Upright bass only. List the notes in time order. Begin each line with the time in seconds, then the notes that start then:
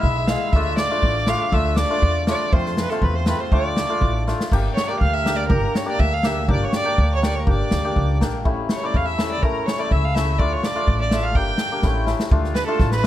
0.03 B1
0.53 D2
1.02 A1
1.52 D2
2.02 E2
2.53 F2
3.02 E2
3.52 D2
4.01 A1
4.52 G1
5.01 D2
5.50 G1
5.99 D2
6.48 G1
6.98 D2
7.47 G1
7.72 D2
7.96 C#2
8.21 A#1
8.45 A1
8.94 E2
9.43 A1
9.91 C#2
10.39 D2
10.88 A1
11.35 G1
11.83 A1
12.31 D2
12.80 A1